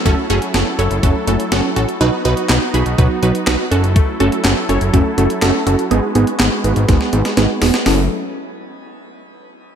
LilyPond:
<<
  \new Staff \with { instrumentName = "Synth pluck" } { \time 4/4 \key fis \dorian \tempo 4 = 123 <cis' fis' a'>8 <cis' fis' gis'>8 <cis' fis' a'>8 <cis' fis' a'>8 <cis' fis' a'>8 <cis' fis' a'>8 <cis' fis' a'>8 <cis' fis' a'>8 | <dis' fis' b'>8 <dis' fis' b'>8 <dis' fis' b'>8 <dis' fis' gis'>8 <dis' fis' b'>8 <dis' fis' b'>8 <dis' fis' b'>8 <cis' fis' a'>8~ | <cis' fis' a'>8 <cis' fis' a'>8 <cis' fis' a'>8 <cis' fis' a'>8 <cis' fis' a'>8 <cis' fis' a'>8 <cis' fis' a'>8 <cis' fis' a'>8 | <b dis' gis'>8 <b dis' gis'>8 <b dis' gis'>8 <b dis' gis'>8 <b dis' gis'>8 <b dis' gis'>8 <b dis' gis'>8 <b dis' gis'>8 |
<cis' fis' a'>8 r2. r8 | }
  \new Staff \with { instrumentName = "Analog synth pad" } { \time 4/4 \key fis \dorian <fis e' a'>1 | <b dis' fis'>2.~ <b dis' fis'>8 <fis e' a'>8~ | <fis e' a'>1 | <gis fis' b'>1 |
<fis e' a'>8 r2. r8 | }
  \new Staff \with { instrumentName = "Synth pluck" } { \time 4/4 \key fis \dorian a8 a8 r8 cis''8 a8 a8 a8 fis'8 | fis8 fis8 r8 b''8 fis8 fis8 fis8 fis'8 | a8 a8 r8 cis''8 a8 a8 a8 fis'8 | gis8 gis8 r8 b'8 gis8 gis8 gis8 fis'8 |
<a cis' e' fis'>8 r2. r8 | }
  \new Staff \with { instrumentName = "Analog synth bass" } { \clef bass \time 4/4 \key fis \dorian fis,,16 r16 fis,,16 r16 fis,,16 r16 fis,,16 fis,,16 fis,,16 r16 fis,,16 r16 fis,,16 r16 a,,16 r16 | b,,16 r16 b,,16 r16 b,,16 r16 b,,16 b,,16 b,,16 r16 b,,16 r16 b,,16 r16 fis,,8~ | fis,,16 r16 fis,,16 r16 fis,,16 r16 fis,,16 fis,,16 fis,,16 r16 fis,,16 r16 fis,,16 r16 fis,,16 r16 | gis,,16 r16 gis,,16 r16 gis,,16 r16 gis,,16 gis,,16 gis,,16 r16 gis,,16 r16 gis,,16 r16 e,,16 r16 |
fis,,8 r2. r8 | }
  \new DrumStaff \with { instrumentName = "Drums" } \drummode { \time 4/4 <hh bd>8 hh16 hh16 <hh sn>8 hh16 hh16 <hh bd>8 hh16 hh16 <hh sn>8 hh16 hh16 | hh8 hh16 hh16 <hc hh sn>8 hh16 hh16 <hh bd>8 hh16 hh16 <hc hh sn>8 hh16 hh16 | <hh bd>8 hh16 hh16 <hc hh sn>8 hh16 hh16 <hh bd>8 hh16 hh16 <hc hh sn>8 hh16 hh16 | hh8 hh16 hh16 <hc hh sn>8 hh16 hh16 <hh bd sn>16 sn16 hh16 <hh sn>16 <hh sn>8 <hho sn>16 <hh sn>16 |
<hho sn>4 r4 r4 r4 | }
>>